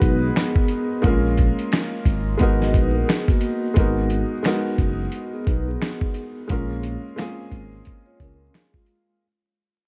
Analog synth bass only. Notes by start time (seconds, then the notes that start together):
0.02 B1
1.05 A#1
2.06 G#1
2.41 G#1
2.74 A#1
3.77 G#1
4.78 F#1
5.47 B1
6.50 A#1
7.52 G#1
8.20 C#2